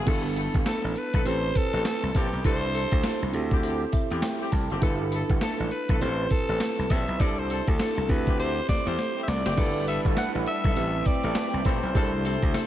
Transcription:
0.06 G1 B3 D4 E4 A4, kick, closed hi-hat, crash, tambourine
0.36 B3 E4 A4, closed hi-hat, tambourine
0.54 G1, kick, closed hi-hat
0.66 B3 E4 A4, snare, clap, closed hi-hat, tambourine
0.84 A1
0.96 B4, closed hi-hat
1.13 B1 B3 E4 A4, kick, closed hi-hat
1.25 A1 C4 E4 G4 A4 B4 C5, closed hi-hat, tambourine
1.55 A4, kick, closed hi-hat, tambourine
1.73 A1 C4 G4 A4, closed hi-hat
1.85 A4, snare, clap, closed hi-hat, tambourine
2.03 C2
2.14 A#1 C4 G4 A4, kick, open hi-hat, tambourine
2.33 B1, closed hi-hat
2.44 C2 C4 D4 E4 G4 A4 C5, kick, closed hi-hat, tambourine
2.74 C4 E4 A4, closed hi-hat, tambourine
2.92 D2, kick, closed hi-hat
3.03 C4 E4 A4, muted slap bass stroke, snare, clap, closed hi-hat, tambourine
3.22 C2
3.32 D2 C4 E4 G4 A4, closed hi-hat
3.51 C4 E4 G4, kick, closed hi-hat
3.63 C4 E4 G4, closed hi-hat, tambourine
3.92 E5, kick, closed hi-hat, tambourine
4.10 E2 C4 E4 G4, closed hi-hat
4.22 G5, snare, clap, closed hi-hat, tambourine
4.40 C4 E4 G4
4.52 C2 A5, kick, open hi-hat, tambourine
4.70 F#1 C4 E4 G4, closed hi-hat
4.80 G1 B3 D4 E4 A4 B4, kick, closed hi-hat, tambourine
5.11 B3 E4 A4, closed hi-hat, tambourine
5.29 G1, kick, closed hi-hat
5.41 B3 E4 A4, muted slap bass stroke, snare, clap, closed hi-hat, tambourine
5.60 A1
5.71 B4, closed hi-hat
5.89 B1 B3 E4 A4, kick, closed hi-hat
5.99 A1 C4 E4 G4 A4 B4 C5, closed hi-hat, tambourine
6.30 A4, kick, closed hi-hat, tambourine
6.48 A1 C4 G4 A4, closed hi-hat
6.60 snare, clap, closed hi-hat, tambourine
6.79 C2
6.90 A#1 C4 G4 A4 E5, kick, open hi-hat, tambourine
7.08 B1, closed hi-hat
7.19 C2 C4 D4 E4 G4 A4 D5, kick, closed hi-hat, tambourine
7.39 C5
7.49 C4 E4 A4, closed hi-hat, tambourine
7.68 D2 A4, kick, closed hi-hat
7.79 C4 E4 A4, snare, clap, closed hi-hat, tambourine
7.97 C2
8.08 D2 C4 E4 G4 A4 B4, kick, open hi-hat
8.27 C4 E4 G4, kick, closed hi-hat
8.38 C4 E4 G4 C5, closed hi-hat, tambourine
8.69 D5, kick, snare, closed hi-hat, tambourine
8.86 E2 C4 E4 G4 C5, closed hi-hat
8.98 snare, closed hi-hat
9.16 C4 E4 G4
9.23 E5
9.27 C2 D5, snare, open hi-hat
9.45 F#1 C4 E4 G4, snare, closed hi-hat
9.56 G1 G3 B3 D4 E4 A4 B4, kick, crash, tambourine
9.87 B3 E4 A4 E5, closed hi-hat, tambourine
10.05 G1, kick, closed hi-hat
10.16 B3 E4 A4 F#5, muted slap bass stroke, snare, clap, closed hi-hat, tambourine
10.35 A1
10.46 E5, closed hi-hat
10.64 B1 B3 E4 A4, kick, closed hi-hat
10.75 A1 A3 C4 E4 G4 A4 B4, closed hi-hat, tambourine
11.05 D5, kick, closed hi-hat, tambourine
11.23 A1 C4 G4 A4, closed hi-hat
11.35 snare, clap, closed hi-hat, tambourine
11.53 C2
11.65 A#1 C4 G4 A4 C5, kick, open hi-hat, tambourine
11.83 B1, closed hi-hat
11.94 C2 C3 C4 D4 E4 G4 G#4 A4, kick, closed hi-hat, tambourine
12.02 A4
12.24 C4 E4 A4, closed hi-hat, tambourine
12.43 D2, kick, closed hi-hat
12.54 C4 E4 A4, muted slap bass stroke, snare, clap, closed hi-hat, tambourine

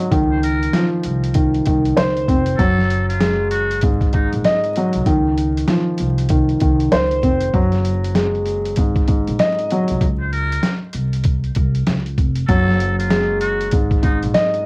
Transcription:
Already playing: G#2 F#3 D#5
0.11 C#2 D#3, kick, closed hi-hat
0.31 C5
0.43 A#4, closed hi-hat
0.63 closed hi-hat
0.73 F3, snare, closed hi-hat
1.03 C2, closed hi-hat
1.24 closed hi-hat
1.34 D#3, kick, closed hi-hat
1.54 closed hi-hat
1.66 C2 D#3, kick, closed hi-hat
1.85 closed hi-hat
1.97 C#2 C5, snare, closed hi-hat
2.17 closed hi-hat
2.28 F1 C4, kick, closed hi-hat
2.46 closed hi-hat
2.58 F#1 F#3 A4, kick, closed hi-hat
2.78 snare
2.90 closed hi-hat
3.09 F4, closed hi-hat
3.21 G#3, snare, closed hi-hat
3.51 F#4, closed hi-hat
3.71 closed hi-hat
3.81 G#1 G#2, kick, closed hi-hat
4.01 kick, closed hi-hat
4.13 G#2 D#4, kick, closed hi-hat
4.33 A#1, closed hi-hat
4.44 D#5, snare, closed hi-hat
4.64 closed hi-hat
4.76 F#3, closed hi-hat
4.93 C2, closed hi-hat
5.06 C#2 D#3, kick, closed hi-hat
5.38 closed hi-hat
5.57 closed hi-hat
5.68 F3, snare, closed hi-hat
5.98 C2, closed hi-hat
6.18 closed hi-hat
6.29 D#3, kick, closed hi-hat
6.49 closed hi-hat
6.60 C2 D#3, kick, closed hi-hat
6.80 closed hi-hat
6.92 C#2 C5, snare, closed hi-hat
7.11 closed hi-hat
7.23 F1 C4, kick, closed hi-hat
7.40 closed hi-hat
7.54 F#1 F#3, kick, closed hi-hat
7.72 snare, closed hi-hat
7.85 closed hi-hat
8.04 closed hi-hat
8.15 G#3, snare, closed hi-hat
8.35 closed hi-hat
8.46 closed hi-hat
8.65 closed hi-hat
8.76 G#1 G#2, kick, closed hi-hat
8.96 kick, closed hi-hat
9.08 G#2, kick, closed hi-hat
9.27 A#1, closed hi-hat
9.39 D#5, snare, closed hi-hat
9.59 closed hi-hat
9.71 F#3, closed hi-hat
9.88 C2, closed hi-hat
10.01 C#2, kick, closed hi-hat
10.20 C5
10.32 A#4, closed hi-hat
10.52 closed hi-hat
10.63 snare, closed hi-hat
10.93 C2, closed hi-hat
11.13 closed hi-hat
11.24 kick, closed hi-hat
11.44 closed hi-hat
11.55 C2, kick, closed hi-hat
11.75 closed hi-hat
11.87 C#2, snare, closed hi-hat
12.06 closed hi-hat
12.18 F1, kick, closed hi-hat
12.35 closed hi-hat
12.47 F#1 F#3 A4, kick, closed hi-hat
12.68 snare
12.80 closed hi-hat
12.99 F4, closed hi-hat
13.10 G#3, snare, closed hi-hat
13.41 F#4, closed hi-hat
13.61 closed hi-hat
13.71 G#1 G#2, kick, closed hi-hat
13.91 kick, closed hi-hat
14.03 G#2 D#4, kick, closed hi-hat
14.23 A#1, closed hi-hat
14.34 D#5, snare, closed hi-hat
14.54 closed hi-hat

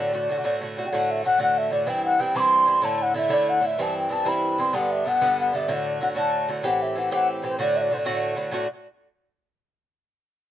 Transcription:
Already playing: A2 D3 A3 F#4
0.00 D5
0.13 A2 D3 A3 F#4
0.30 A2 D3 A3 F#4
0.38 D3 A3 F#4
0.44 A2 D3 A3 F#4
0.61 A2 D3 A3 F#4
0.77 A2 D3 A3 F#4
0.85 D3 A3 F#4 G5
0.91 A2 D3 A3 F#4 F#5
1.11 E5
1.24 A2 D3 A3 F#4 F#5
1.38 A2 D3 A3 F#4 F#5
1.58 E5
1.71 A2 D3 A3 F#4 D5
1.86 G2 E3 C4 E4 G5
2.05 F#5
2.19 G2 E3 C4 E4 G5
2.35 G2 E3 C4 E4 D6
2.40 C6
2.66 G2 E3 C4 E4
2.82 A2 D3 A3 E4 A5
3.02 F#5
3.14 A2 D3 A3 E4 E5
3.29 A2 D3 A3 E4
3.33 D5
3.49 F#5
3.61 A2 D3 A3 E4
3.66 E5
3.78 G2 E3 C4 E4
3.82 A5
3.98 G5
4.09 G2 E3 C4 E4 A5
4.25 G2 E3 C4 E4 B5
4.58 G2 E3 C4 E4 C6
4.73 G2 D3 B3 D4 F#5
4.91 E5
5.05 G2 D3 B3 D4 F#5
5.21 G2 D3 B3 D4
5.40 F#5
5.53 G2 D3 B3 D4 E5
5.68 A2 D3 A3 F#4 E5
5.74 D5
6.01 A2 D3 A3 F#4 F#5
6.15 A2 D3 A3 F#4 A5
6.48 A2 D3 A3 F#4
6.63 A2 E3 C4 G4 F#5
6.82 E5
6.95 A2 E3 C4 G4 F#5
7.11 A2 E3 C4 G4 F#5
7.42 A2 E3 C4 G4 C5
7.59 A2 D3 A3 F#4 D5
7.77 E5
7.82 D5
7.90 A2 D3 A3 F#4 C5
7.99 D5
8.05 A2 D3 A3 F#4
8.36 A2 D3 A3 F#4
8.51 A2 D3 A3 F#4 D5

